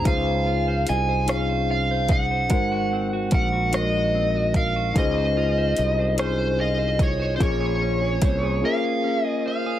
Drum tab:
HH |x-xx-x|x-xx-x|x-xx-x|x-x---|
SD |---r--|---r--|---r--|------|
BD |o----o|o-o--o|o----o|o-o---|